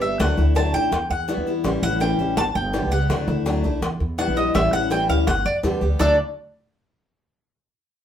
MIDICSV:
0, 0, Header, 1, 6, 480
1, 0, Start_track
1, 0, Key_signature, 2, "major"
1, 0, Tempo, 362538
1, 260, Time_signature, 4, 2, 24, 8
1, 10645, End_track
2, 0, Start_track
2, 0, Title_t, "Cuban tres"
2, 0, Program_c, 0, 25
2, 21, Note_on_c, 0, 76, 79
2, 253, Note_off_c, 0, 76, 0
2, 264, Note_on_c, 0, 78, 90
2, 708, Note_off_c, 0, 78, 0
2, 744, Note_on_c, 0, 81, 92
2, 974, Note_off_c, 0, 81, 0
2, 979, Note_on_c, 0, 79, 102
2, 1426, Note_off_c, 0, 79, 0
2, 1463, Note_on_c, 0, 78, 86
2, 2131, Note_off_c, 0, 78, 0
2, 2424, Note_on_c, 0, 78, 110
2, 2654, Note_off_c, 0, 78, 0
2, 2663, Note_on_c, 0, 79, 78
2, 3107, Note_off_c, 0, 79, 0
2, 3139, Note_on_c, 0, 81, 108
2, 3372, Note_off_c, 0, 81, 0
2, 3380, Note_on_c, 0, 79, 80
2, 3826, Note_off_c, 0, 79, 0
2, 3862, Note_on_c, 0, 78, 89
2, 4529, Note_off_c, 0, 78, 0
2, 5542, Note_on_c, 0, 78, 96
2, 5773, Note_off_c, 0, 78, 0
2, 5784, Note_on_c, 0, 75, 78
2, 6013, Note_off_c, 0, 75, 0
2, 6024, Note_on_c, 0, 76, 83
2, 6254, Note_off_c, 0, 76, 0
2, 6264, Note_on_c, 0, 78, 100
2, 6493, Note_off_c, 0, 78, 0
2, 6507, Note_on_c, 0, 79, 93
2, 6735, Note_off_c, 0, 79, 0
2, 6746, Note_on_c, 0, 77, 93
2, 6974, Note_off_c, 0, 77, 0
2, 6984, Note_on_c, 0, 78, 115
2, 7214, Note_off_c, 0, 78, 0
2, 7224, Note_on_c, 0, 74, 82
2, 7366, Note_off_c, 0, 74, 0
2, 7937, Note_on_c, 0, 62, 87
2, 7944, Note_on_c, 0, 69, 84
2, 7951, Note_on_c, 0, 74, 97
2, 8160, Note_off_c, 0, 62, 0
2, 8164, Note_off_c, 0, 69, 0
2, 8168, Note_off_c, 0, 74, 0
2, 10645, End_track
3, 0, Start_track
3, 0, Title_t, "Steel-string acoustic guitar"
3, 0, Program_c, 1, 25
3, 12, Note_on_c, 1, 67, 48
3, 20, Note_on_c, 1, 59, 47
3, 29, Note_on_c, 1, 55, 42
3, 246, Note_off_c, 1, 67, 0
3, 250, Note_off_c, 1, 59, 0
3, 254, Note_off_c, 1, 55, 0
3, 256, Note_on_c, 1, 50, 62
3, 260, Note_on_c, 1, 54, 76
3, 266, Note_on_c, 1, 57, 69
3, 269, Note_on_c, 1, 62, 81
3, 272, Note_on_c, 1, 64, 74
3, 477, Note_off_c, 1, 64, 0
3, 488, Note_off_c, 1, 50, 0
3, 489, Note_off_c, 1, 62, 0
3, 490, Note_off_c, 1, 54, 0
3, 493, Note_off_c, 1, 57, 0
3, 493, Note_on_c, 1, 64, 50
3, 505, Note_on_c, 1, 62, 48
3, 513, Note_on_c, 1, 57, 40
3, 725, Note_off_c, 1, 57, 0
3, 726, Note_off_c, 1, 62, 0
3, 727, Note_off_c, 1, 64, 0
3, 730, Note_on_c, 1, 50, 67
3, 735, Note_on_c, 1, 54, 65
3, 741, Note_on_c, 1, 57, 70
3, 742, Note_on_c, 1, 62, 72
3, 751, Note_on_c, 1, 64, 78
3, 956, Note_off_c, 1, 64, 0
3, 965, Note_off_c, 1, 50, 0
3, 968, Note_off_c, 1, 54, 0
3, 971, Note_off_c, 1, 57, 0
3, 971, Note_off_c, 1, 62, 0
3, 972, Note_on_c, 1, 64, 50
3, 984, Note_on_c, 1, 62, 48
3, 992, Note_on_c, 1, 57, 36
3, 1206, Note_off_c, 1, 64, 0
3, 1212, Note_off_c, 1, 62, 0
3, 1216, Note_off_c, 1, 57, 0
3, 1692, Note_on_c, 1, 47, 75
3, 1701, Note_on_c, 1, 50, 82
3, 1704, Note_on_c, 1, 55, 68
3, 1711, Note_on_c, 1, 64, 82
3, 1712, Note_on_c, 1, 59, 72
3, 1926, Note_off_c, 1, 47, 0
3, 1927, Note_off_c, 1, 64, 0
3, 1930, Note_off_c, 1, 50, 0
3, 1932, Note_off_c, 1, 55, 0
3, 1936, Note_off_c, 1, 59, 0
3, 1943, Note_on_c, 1, 64, 51
3, 1950, Note_on_c, 1, 59, 49
3, 1959, Note_on_c, 1, 55, 46
3, 2162, Note_off_c, 1, 55, 0
3, 2170, Note_on_c, 1, 52, 72
3, 2171, Note_off_c, 1, 64, 0
3, 2175, Note_off_c, 1, 59, 0
3, 2178, Note_on_c, 1, 55, 77
3, 2185, Note_on_c, 1, 61, 80
3, 2189, Note_on_c, 1, 64, 75
3, 2401, Note_off_c, 1, 64, 0
3, 2405, Note_off_c, 1, 52, 0
3, 2409, Note_off_c, 1, 55, 0
3, 2412, Note_off_c, 1, 61, 0
3, 2417, Note_on_c, 1, 64, 51
3, 2428, Note_on_c, 1, 61, 44
3, 2435, Note_on_c, 1, 55, 41
3, 2640, Note_off_c, 1, 55, 0
3, 2648, Note_off_c, 1, 64, 0
3, 2649, Note_off_c, 1, 61, 0
3, 2651, Note_on_c, 1, 52, 69
3, 2656, Note_on_c, 1, 55, 72
3, 2665, Note_on_c, 1, 61, 73
3, 2672, Note_on_c, 1, 64, 83
3, 2881, Note_off_c, 1, 64, 0
3, 2885, Note_off_c, 1, 52, 0
3, 2888, Note_off_c, 1, 55, 0
3, 2892, Note_off_c, 1, 61, 0
3, 2897, Note_on_c, 1, 64, 52
3, 2908, Note_on_c, 1, 61, 51
3, 2921, Note_on_c, 1, 55, 42
3, 3128, Note_off_c, 1, 64, 0
3, 3134, Note_off_c, 1, 61, 0
3, 3135, Note_off_c, 1, 55, 0
3, 3618, Note_on_c, 1, 47, 72
3, 3629, Note_on_c, 1, 50, 77
3, 3630, Note_on_c, 1, 55, 74
3, 3635, Note_on_c, 1, 59, 76
3, 3641, Note_on_c, 1, 67, 72
3, 3839, Note_off_c, 1, 67, 0
3, 3849, Note_off_c, 1, 47, 0
3, 3852, Note_off_c, 1, 59, 0
3, 3854, Note_off_c, 1, 50, 0
3, 3854, Note_off_c, 1, 55, 0
3, 3854, Note_on_c, 1, 67, 55
3, 3867, Note_on_c, 1, 59, 48
3, 3875, Note_on_c, 1, 55, 43
3, 4087, Note_off_c, 1, 67, 0
3, 4093, Note_off_c, 1, 59, 0
3, 4097, Note_off_c, 1, 55, 0
3, 4103, Note_on_c, 1, 50, 77
3, 4105, Note_on_c, 1, 54, 78
3, 4113, Note_on_c, 1, 57, 75
3, 4115, Note_on_c, 1, 62, 84
3, 4120, Note_on_c, 1, 64, 74
3, 4320, Note_off_c, 1, 64, 0
3, 4328, Note_off_c, 1, 62, 0
3, 4331, Note_off_c, 1, 50, 0
3, 4332, Note_off_c, 1, 54, 0
3, 4336, Note_off_c, 1, 57, 0
3, 4336, Note_on_c, 1, 64, 49
3, 4344, Note_on_c, 1, 62, 50
3, 4355, Note_on_c, 1, 57, 38
3, 4567, Note_off_c, 1, 64, 0
3, 4570, Note_off_c, 1, 57, 0
3, 4571, Note_off_c, 1, 62, 0
3, 4577, Note_on_c, 1, 50, 66
3, 4581, Note_on_c, 1, 54, 79
3, 4586, Note_on_c, 1, 57, 66
3, 4591, Note_on_c, 1, 62, 72
3, 4595, Note_on_c, 1, 64, 82
3, 4800, Note_off_c, 1, 64, 0
3, 4808, Note_off_c, 1, 50, 0
3, 4810, Note_off_c, 1, 54, 0
3, 4811, Note_off_c, 1, 62, 0
3, 4812, Note_off_c, 1, 57, 0
3, 4816, Note_on_c, 1, 64, 50
3, 4827, Note_on_c, 1, 62, 46
3, 4834, Note_on_c, 1, 57, 35
3, 5047, Note_off_c, 1, 64, 0
3, 5053, Note_off_c, 1, 62, 0
3, 5056, Note_off_c, 1, 57, 0
3, 5535, Note_on_c, 1, 47, 69
3, 5538, Note_on_c, 1, 50, 63
3, 5546, Note_on_c, 1, 55, 71
3, 5549, Note_on_c, 1, 59, 79
3, 5555, Note_on_c, 1, 64, 77
3, 5757, Note_off_c, 1, 64, 0
3, 5766, Note_off_c, 1, 47, 0
3, 5767, Note_off_c, 1, 59, 0
3, 5768, Note_off_c, 1, 50, 0
3, 5772, Note_off_c, 1, 55, 0
3, 5773, Note_on_c, 1, 64, 49
3, 5783, Note_on_c, 1, 59, 51
3, 5791, Note_on_c, 1, 55, 43
3, 6005, Note_off_c, 1, 55, 0
3, 6005, Note_off_c, 1, 64, 0
3, 6010, Note_off_c, 1, 59, 0
3, 6015, Note_on_c, 1, 52, 74
3, 6021, Note_on_c, 1, 55, 79
3, 6027, Note_on_c, 1, 61, 74
3, 6034, Note_on_c, 1, 64, 86
3, 6242, Note_off_c, 1, 64, 0
3, 6246, Note_off_c, 1, 52, 0
3, 6249, Note_off_c, 1, 55, 0
3, 6252, Note_off_c, 1, 61, 0
3, 6258, Note_on_c, 1, 64, 50
3, 6269, Note_on_c, 1, 61, 45
3, 6278, Note_on_c, 1, 55, 39
3, 6481, Note_off_c, 1, 55, 0
3, 6488, Note_off_c, 1, 64, 0
3, 6489, Note_off_c, 1, 61, 0
3, 6491, Note_on_c, 1, 52, 70
3, 6497, Note_on_c, 1, 55, 75
3, 6505, Note_on_c, 1, 61, 64
3, 6512, Note_on_c, 1, 64, 83
3, 6724, Note_off_c, 1, 52, 0
3, 6727, Note_off_c, 1, 55, 0
3, 6727, Note_off_c, 1, 64, 0
3, 6731, Note_off_c, 1, 61, 0
3, 6743, Note_on_c, 1, 64, 51
3, 6751, Note_on_c, 1, 61, 48
3, 6757, Note_on_c, 1, 55, 39
3, 6970, Note_off_c, 1, 55, 0
3, 6970, Note_off_c, 1, 64, 0
3, 6974, Note_off_c, 1, 61, 0
3, 7458, Note_on_c, 1, 47, 72
3, 7461, Note_on_c, 1, 50, 69
3, 7467, Note_on_c, 1, 55, 71
3, 7473, Note_on_c, 1, 59, 83
3, 7476, Note_on_c, 1, 67, 77
3, 7679, Note_off_c, 1, 67, 0
3, 7688, Note_off_c, 1, 47, 0
3, 7690, Note_off_c, 1, 50, 0
3, 7691, Note_off_c, 1, 59, 0
3, 7692, Note_off_c, 1, 55, 0
3, 7695, Note_on_c, 1, 67, 50
3, 7707, Note_on_c, 1, 59, 50
3, 7714, Note_on_c, 1, 55, 40
3, 7926, Note_off_c, 1, 67, 0
3, 7932, Note_off_c, 1, 59, 0
3, 7933, Note_on_c, 1, 50, 72
3, 7936, Note_off_c, 1, 55, 0
3, 7938, Note_on_c, 1, 54, 76
3, 7945, Note_on_c, 1, 57, 70
3, 7947, Note_on_c, 1, 62, 85
3, 7953, Note_on_c, 1, 64, 77
3, 8127, Note_off_c, 1, 50, 0
3, 8130, Note_off_c, 1, 54, 0
3, 8133, Note_off_c, 1, 57, 0
3, 8134, Note_off_c, 1, 62, 0
3, 8137, Note_off_c, 1, 64, 0
3, 10645, End_track
4, 0, Start_track
4, 0, Title_t, "Upright bass"
4, 0, Program_c, 2, 32
4, 0, Note_on_c, 2, 31, 80
4, 241, Note_off_c, 2, 31, 0
4, 261, Note_on_c, 2, 38, 107
4, 488, Note_off_c, 2, 38, 0
4, 496, Note_on_c, 2, 38, 91
4, 954, Note_off_c, 2, 38, 0
4, 975, Note_on_c, 2, 35, 83
4, 1205, Note_off_c, 2, 35, 0
4, 1214, Note_on_c, 2, 40, 90
4, 1444, Note_off_c, 2, 40, 0
4, 1457, Note_on_c, 2, 40, 81
4, 1800, Note_off_c, 2, 40, 0
4, 1813, Note_on_c, 2, 40, 84
4, 2158, Note_off_c, 2, 40, 0
4, 2177, Note_on_c, 2, 33, 97
4, 2406, Note_off_c, 2, 33, 0
4, 2417, Note_on_c, 2, 33, 105
4, 2874, Note_off_c, 2, 33, 0
4, 2895, Note_on_c, 2, 33, 87
4, 3125, Note_off_c, 2, 33, 0
4, 3138, Note_on_c, 2, 31, 92
4, 3366, Note_off_c, 2, 31, 0
4, 3378, Note_on_c, 2, 31, 87
4, 3737, Note_on_c, 2, 37, 79
4, 3757, Note_off_c, 2, 31, 0
4, 4080, Note_off_c, 2, 37, 0
4, 4097, Note_on_c, 2, 38, 102
4, 4326, Note_off_c, 2, 38, 0
4, 4337, Note_on_c, 2, 38, 107
4, 4793, Note_off_c, 2, 38, 0
4, 4819, Note_on_c, 2, 35, 82
4, 5046, Note_off_c, 2, 35, 0
4, 5057, Note_on_c, 2, 40, 86
4, 5285, Note_off_c, 2, 40, 0
4, 5300, Note_on_c, 2, 40, 84
4, 5663, Note_on_c, 2, 34, 78
4, 5683, Note_off_c, 2, 40, 0
4, 6002, Note_off_c, 2, 34, 0
4, 6024, Note_on_c, 2, 33, 99
4, 6249, Note_off_c, 2, 33, 0
4, 6259, Note_on_c, 2, 33, 97
4, 6714, Note_off_c, 2, 33, 0
4, 6738, Note_on_c, 2, 38, 83
4, 6966, Note_off_c, 2, 38, 0
4, 6981, Note_on_c, 2, 31, 91
4, 7207, Note_off_c, 2, 31, 0
4, 7217, Note_on_c, 2, 42, 82
4, 7433, Note_off_c, 2, 42, 0
4, 7457, Note_on_c, 2, 40, 72
4, 7673, Note_off_c, 2, 40, 0
4, 7698, Note_on_c, 2, 38, 83
4, 7913, Note_off_c, 2, 38, 0
4, 7937, Note_on_c, 2, 38, 97
4, 8160, Note_off_c, 2, 38, 0
4, 10645, End_track
5, 0, Start_track
5, 0, Title_t, "Muted steel-string acoustic guitar strokes"
5, 1217, Note_on_c, 9, 29, 64
5, 1349, Note_off_c, 9, 29, 0
5, 3149, Note_on_c, 9, 29, 60
5, 3281, Note_off_c, 9, 29, 0
5, 5060, Note_on_c, 9, 29, 63
5, 5192, Note_off_c, 9, 29, 0
5, 6978, Note_on_c, 9, 29, 64
5, 7111, Note_off_c, 9, 29, 0
5, 10645, End_track
6, 0, Start_track
6, 0, Title_t, "Drums"
6, 266, Note_on_c, 9, 60, 76
6, 399, Note_off_c, 9, 60, 0
6, 504, Note_on_c, 9, 60, 29
6, 636, Note_off_c, 9, 60, 0
6, 746, Note_on_c, 9, 60, 59
6, 878, Note_off_c, 9, 60, 0
6, 985, Note_on_c, 9, 60, 35
6, 1117, Note_off_c, 9, 60, 0
6, 1225, Note_on_c, 9, 60, 66
6, 1358, Note_off_c, 9, 60, 0
6, 1463, Note_on_c, 9, 60, 34
6, 1596, Note_off_c, 9, 60, 0
6, 1701, Note_on_c, 9, 60, 35
6, 1701, Note_on_c, 9, 61, 71
6, 1834, Note_off_c, 9, 60, 0
6, 1834, Note_off_c, 9, 61, 0
6, 2179, Note_on_c, 9, 60, 61
6, 2311, Note_off_c, 9, 60, 0
6, 2420, Note_on_c, 9, 60, 29
6, 2553, Note_off_c, 9, 60, 0
6, 2660, Note_on_c, 9, 60, 62
6, 2792, Note_off_c, 9, 60, 0
6, 2900, Note_on_c, 9, 60, 37
6, 3032, Note_off_c, 9, 60, 0
6, 3139, Note_on_c, 9, 60, 72
6, 3272, Note_off_c, 9, 60, 0
6, 3382, Note_on_c, 9, 60, 32
6, 3514, Note_off_c, 9, 60, 0
6, 3623, Note_on_c, 9, 60, 34
6, 3623, Note_on_c, 9, 61, 83
6, 3755, Note_off_c, 9, 60, 0
6, 3755, Note_off_c, 9, 61, 0
6, 4104, Note_on_c, 9, 60, 66
6, 4236, Note_off_c, 9, 60, 0
6, 4343, Note_on_c, 9, 60, 35
6, 4475, Note_off_c, 9, 60, 0
6, 4582, Note_on_c, 9, 60, 62
6, 4714, Note_off_c, 9, 60, 0
6, 4823, Note_on_c, 9, 60, 32
6, 4955, Note_off_c, 9, 60, 0
6, 5065, Note_on_c, 9, 60, 67
6, 5197, Note_off_c, 9, 60, 0
6, 5302, Note_on_c, 9, 60, 31
6, 5434, Note_off_c, 9, 60, 0
6, 5543, Note_on_c, 9, 60, 32
6, 5543, Note_on_c, 9, 61, 89
6, 5675, Note_off_c, 9, 60, 0
6, 5675, Note_off_c, 9, 61, 0
6, 6022, Note_on_c, 9, 60, 73
6, 6155, Note_off_c, 9, 60, 0
6, 6262, Note_on_c, 9, 60, 36
6, 6394, Note_off_c, 9, 60, 0
6, 6500, Note_on_c, 9, 60, 60
6, 6632, Note_off_c, 9, 60, 0
6, 6742, Note_on_c, 9, 60, 36
6, 6874, Note_off_c, 9, 60, 0
6, 6981, Note_on_c, 9, 60, 70
6, 7113, Note_off_c, 9, 60, 0
6, 7222, Note_on_c, 9, 60, 30
6, 7355, Note_off_c, 9, 60, 0
6, 7461, Note_on_c, 9, 60, 31
6, 7461, Note_on_c, 9, 61, 81
6, 7594, Note_off_c, 9, 60, 0
6, 7594, Note_off_c, 9, 61, 0
6, 7938, Note_on_c, 9, 61, 99
6, 8070, Note_off_c, 9, 61, 0
6, 10645, End_track
0, 0, End_of_file